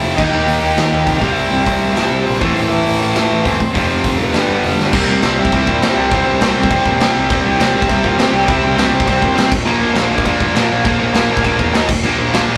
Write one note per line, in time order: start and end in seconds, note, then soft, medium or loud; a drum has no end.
0.00 0.13 F1 medium
0.00 0.17 F2 medium
0.00 0.17 C3 medium
0.00 0.18 F3 loud
0.00 0.17 E4 medium
0.00 0.15 E5 loud
0.16 0.29 D#2 loud
0.16 1.20 D#3 medium
0.16 1.21 A#3 medium
0.16 0.24 D#4 medium
0.16 0.21 D#5 medium
0.16 kick loud
0.16 crash medium
0.20 1.22 D#4 loud
0.30 0.43 D#2 loud
0.30 0.61 G4 medium
0.30 0.59 G5 loud
0.47 0.58 D#2 medium
0.47 open hi-hat medium
0.60 0.73 D#2 medium
0.60 1.18 G4 medium
0.60 1.18 G5 medium
0.77 0.88 D#2 medium
0.77 snare loud
0.77 open hi-hat medium
0.92 1.03 D#2 medium
1.07 1.18 C2 loud
1.07 kick medium
1.07 open hi-hat medium
1.19 1.32 C2 medium
1.19 2.39 C3 medium
1.19 2.40 G3 loud
1.19 1.35 F4 medium
1.19 1.32 F5 medium
1.19 kick medium
1.24 2.41 C4 loud
1.33 1.64 E4 medium
1.33 1.62 E5 medium
1.33 open hi-hat medium
1.38 1.48 C2 loud
1.51 1.62 C2 loud
1.63 1.77 C2 medium
1.63 1.94 E4 medium
1.63 1.92 E5 medium
1.63 kick medium
1.63 open hi-hat medium
1.82 1.92 C2 medium
1.93 2.07 C2 medium
1.93 2.24 E4 medium
1.93 2.22 E5 loud
1.93 open hi-hat medium
1.97 snare loud
2.10 2.21 C2 medium
2.24 2.37 A#1 medium
2.24 2.54 C4 medium
2.24 2.52 C5 loud
2.24 open hi-hat medium
2.40 2.52 A1 medium
2.40 3.58 A2 medium
2.40 3.59 E3 loud
2.40 3.60 A3 loud
2.40 kick medium
2.53 2.67 A1 medium
2.53 2.70 C4 medium
2.53 2.68 C5 medium
2.53 open hi-hat medium
2.68 2.81 A1 loud
2.68 2.99 E4 medium
2.68 2.99 E5 loud
2.86 2.97 A1 medium
2.86 open hi-hat medium
3.00 3.12 A1 medium
3.00 3.43 E4 medium
3.00 3.46 E5 loud
3.15 3.27 A1 loud
3.15 snare loud
3.15 open hi-hat medium
3.32 3.41 A1 loud
3.45 3.56 G1 loud
3.45 3.73 C4 medium
3.45 3.72 C5 loud
3.45 kick medium
3.45 open hi-hat medium
3.60 3.71 A1 medium
3.60 kick medium
3.73 3.85 F1 medium
3.73 4.32 F2 loud
3.73 4.33 C3 loud
3.73 4.34 F3 medium
3.73 3.87 C4 medium
3.73 3.85 C5 medium
3.73 kick medium
3.73 open hi-hat medium
3.87 4.00 F1 loud
3.87 4.16 C4 medium
3.87 4.17 C5 medium
4.04 4.15 F1 loud
4.04 kick medium
4.04 open hi-hat medium
4.18 4.29 F1 medium
4.18 4.74 B3 medium
4.18 4.74 B4 medium
4.32 4.44 G1 medium
4.32 4.92 G2 medium
4.32 4.92 D3 medium
4.32 4.92 G3 loud
4.32 snare loud
4.32 open hi-hat medium
4.49 4.59 G1 loud
4.64 4.74 F1 loud
4.64 open hi-hat medium
4.79 4.89 G1 medium
4.79 snare medium
4.93 5.07 C2 medium
4.93 5.24 C3 loud
4.93 5.24 G3 loud
4.93 5.21 A#3 medium
4.93 5.23 C4 loud
4.93 5.22 A#4 medium
4.93 kick loud
4.93 crash loud
4.93 crash medium
5.08 5.22 C2 loud
5.22 5.37 C2 medium
5.22 5.51 C3 medium
5.22 5.52 G3 medium
5.22 5.36 C4 medium
5.22 5.53 C4 loud
5.22 5.38 C5 loud
5.22 snare loud
5.22 crash medium
5.38 5.52 C2 loud
5.38 5.52 E4 medium
5.38 5.52 E5 loud
5.45 kick loud
5.52 5.66 C2 medium
5.52 5.83 C3 loud
5.52 5.82 G3 loud
5.52 5.82 C4 loud
5.52 5.94 E4 medium
5.52 5.99 E5 loud
5.52 kick medium
5.52 crash medium
5.67 5.81 A#2 medium
5.67 kick medium
5.82 5.96 C3 loud
5.82 6.10 C3 medium
5.82 6.11 G3 medium
5.82 6.11 C4 medium
5.82 snare loud
5.82 crash medium
5.97 6.11 C2 medium
5.97 6.11 D4 medium
5.97 6.13 D5 medium
6.11 6.25 C2 loud
6.11 6.41 C3 medium
6.11 6.41 G3 loud
6.11 6.40 C4 loud
6.11 6.25 C4 medium
6.11 6.25 C5 medium
6.11 kick loud
6.11 crash medium
6.26 6.40 C2 medium
6.26 7.11 C4 medium
6.26 7.11 C5 loud
6.41 6.55 C2 medium
6.41 6.69 C3 medium
6.41 6.70 G3 medium
6.41 6.70 C4 loud
6.41 snare loud
6.41 crash medium
6.56 6.70 C2 medium
6.63 kick loud
6.70 6.84 C2 medium
6.70 7.00 C3 loud
6.70 7.00 G3 loud
6.70 7.00 C4 loud
6.70 kick loud
6.70 crash medium
6.85 6.99 A#2 loud
6.85 kick medium
7.00 7.14 C3 loud
7.00 7.28 C3 medium
7.00 7.29 G3 medium
7.00 7.30 C4 medium
7.00 snare loud
7.00 crash medium
7.16 7.29 C2 loud
7.29 7.44 C2 loud
7.29 7.59 C3 loud
7.29 7.59 G3 loud
7.29 7.58 C4 loud
7.29 kick loud
7.29 crash medium
7.46 7.60 C2 loud
7.60 7.74 C2 medium
7.60 7.88 C3 medium
7.60 7.88 G3 medium
7.60 7.89 C4 loud
7.60 7.74 D4 medium
7.60 7.76 D5 loud
7.60 snare loud
7.60 crash medium
7.76 7.89 C2 loud
7.76 7.89 C4 medium
7.76 7.91 C5 medium
7.82 kick loud
7.89 8.03 C2 medium
7.89 8.19 C3 loud
7.89 8.18 G3 loud
7.89 8.17 C4 loud
7.89 8.03 E4 medium
7.89 8.06 E5 loud
7.89 kick loud
7.89 crash medium
8.04 8.18 A#2 loud
8.04 8.19 F4 medium
8.04 8.20 F5 medium
8.04 kick medium
8.18 8.32 C3 loud
8.18 8.46 C3 medium
8.18 8.47 G3 medium
8.18 8.47 C4 loud
8.18 8.47 G4 loud
8.18 8.48 G5 loud
8.18 snare loud
8.18 crash medium
8.33 8.47 C2 loud
8.47 8.62 C2 medium
8.47 8.77 C3 loud
8.47 8.77 G3 loud
8.47 8.76 C4 loud
8.47 8.76 E4 medium
8.47 8.76 E5 medium
8.47 kick loud
8.47 crash medium
8.63 8.77 C2 loud
8.77 8.92 C2 medium
8.77 9.06 C3 medium
8.77 9.06 G3 medium
8.77 9.07 C4 medium
8.77 8.92 D4 medium
8.77 8.94 D5 loud
8.77 snare loud
8.77 crash medium
8.92 9.06 C2 loud
8.92 9.49 C4 medium
8.92 9.49 C5 medium
9.00 kick loud
9.07 9.21 C2 medium
9.07 9.36 C3 loud
9.07 9.35 G3 loud
9.07 9.34 C4 loud
9.07 kick loud
9.07 crash medium
9.22 9.36 A#2 loud
9.22 kick loud
9.36 9.51 C3 medium
9.36 9.51 C3 loud
9.36 9.51 G3 medium
9.36 9.50 C4 loud
9.36 snare loud
9.36 crash medium
9.51 9.65 A#1 loud
9.51 kick loud
9.51 crash loud
9.65 9.80 A#1 medium
9.65 9.95 A#2 medium
9.65 9.94 F3 loud
9.65 9.93 A#3 loud
9.65 10.22 A#3 medium
9.65 10.22 A#4 medium
9.65 crash medium
9.81 9.95 A#1 loud
9.94 10.10 A#1 loud
9.94 10.23 A#2 medium
9.94 10.24 F3 medium
9.94 10.24 A#3 loud
9.94 snare loud
9.94 crash medium
10.11 10.25 A#1 medium
10.18 kick loud
10.24 10.40 A#1 medium
10.24 10.55 A#2 loud
10.24 10.54 F3 loud
10.24 10.54 A#3 loud
10.24 10.82 D4 medium
10.24 10.82 D5 loud
10.24 kick loud
10.24 crash medium
10.40 10.54 G2 loud
10.40 kick medium
10.55 10.69 A#2 loud
10.55 10.83 A#2 medium
10.55 10.84 F3 medium
10.55 10.84 A#3 medium
10.55 snare loud
10.55 crash medium
10.70 10.84 A#1 medium
10.84 10.99 A#1 loud
10.84 11.14 A#2 loud
10.84 11.13 F3 loud
10.84 11.12 A#3 loud
10.84 10.99 A#3 medium
10.84 10.98 A#4 medium
10.84 kick loud
10.84 crash medium
11.00 11.14 A#1 loud
11.00 11.85 A#3 medium
11.00 11.85 A#4 loud
11.13 11.29 A#1 medium
11.13 11.42 A#2 medium
11.13 11.42 F3 medium
11.13 11.43 A#3 medium
11.13 snare loud
11.13 crash medium
11.30 11.44 A#1 loud
11.37 kick loud
11.43 11.58 A#1 medium
11.43 11.72 A#2 loud
11.43 11.73 F3 loud
11.43 11.73 A#3 loud
11.43 kick medium
11.43 crash medium
11.59 11.73 E2 loud
11.59 kick medium
11.73 11.88 D#2 loud
11.73 11.88 D#3 loud
11.73 11.88 A#3 loud
11.73 11.88 D#4 loud
11.73 snare loud
11.73 crash medium
11.89 12.03 F1 loud
11.89 kick loud
11.89 crash loud
12.04 12.18 A#1 loud
12.04 12.33 A#2 loud
12.04 12.32 F3 loud
12.04 12.31 A#3 loud
12.04 crash medium
12.19 12.32 A#1 loud
12.33 12.47 A#1 loud
12.33 12.57 A#2 medium
12.33 12.57 F3 medium
12.33 12.57 A#3 loud
12.33 12.57 D4 medium
12.33 12.57 D5 medium
12.33 snare loud
12.33 crash medium
12.49 12.57 A#1 medium